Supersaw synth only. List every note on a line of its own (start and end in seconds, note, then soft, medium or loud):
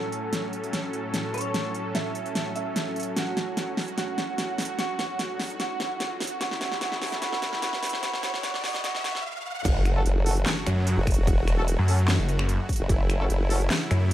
0.00 9.21 A2 medium
0.00 9.21 F#3 medium
0.00 9.21 C#4 medium
0.00 3.15 A4 medium
3.16 6.40 F#4 medium
6.41 9.24 E4 medium
9.65 14.13 C#3 medium
9.65 14.13 F#3 medium
9.65 14.13 A3 medium
9.65 12.88 F#4 medium
12.90 14.13 E4 medium